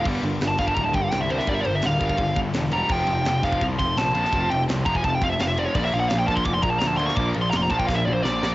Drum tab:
CC |x---------------|----------------|x---------------|----------------|
RD |--x-x-x-x-x-x-x-|x-x-x-x-x-x-x-x-|--x-x-x-x-x-x-x-|x-x-x-x-x-x-x-x-|
SD |----o-o-----o--o|----o-------o---|----o-o-----o--o|----o-------o---|
BD |o-----ooo-o-----|o-----ooo-o-----|o-----ooo-o-----|o-----ooo-o-----|

CC |x---------------|----------------|
RD |--x-x-x-x-x-x-x-|x-x-x-x---------|
SD |----o-------o--o|----o---o---o-o-|
BD |o-----ooo-o-----|o-----ooo-------|